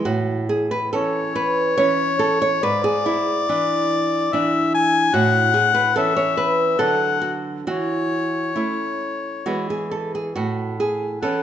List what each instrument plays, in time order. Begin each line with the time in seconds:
0.05 nylon-string guitar A2 F#4
0.49 nylon-string guitar G#4
0.71 nylon-string guitar B4
0.93 nylon-string guitar E3 C#4 A4, harmonica C#5
1.36 nylon-string guitar B4
1.77 nylon-string guitar E3 C#4 C#5
2.19 nylon-string guitar A4
2.42 nylon-string guitar C#5
2.63 nylon-string guitar G#2 B4, harmonica D5
2.84 nylon-string guitar G#4
3.06 nylon-string guitar E4
3.49 nylon-string guitar E3 D4
4.33 nylon-string guitar E3 D4, harmonica E5
4.74 harmonica G#5
5.14 nylon-string guitar A2 F#4, harmonica F#5
5.54 nylon-string guitar G#4
5.75 nylon-string guitar B4
5.96 nylon-string guitar E3 C#4 A4, harmonica E5
6.17 nylon-string guitar C#5
6.37 nylon-string guitar B4
6.79 nylon-string guitar D3 F#3 D4 A4, harmonica F#5
7.21 nylon-string guitar F#4
7.67 nylon-string guitar E3 F#4, harmonica C#5
8.56 nylon-string guitar A3 C#4 E4
9.46 nylon-string guitar E3 G#3 B3 F#4
9.70 nylon-string guitar G#4
9.91 nylon-string guitar A4
10.15 nylon-string guitar G#4
10.35 nylon-string guitar A2 F#4
10.80 nylon-string guitar G#4
11.22 nylon-string guitar E3 C#4 A4, harmonica F#5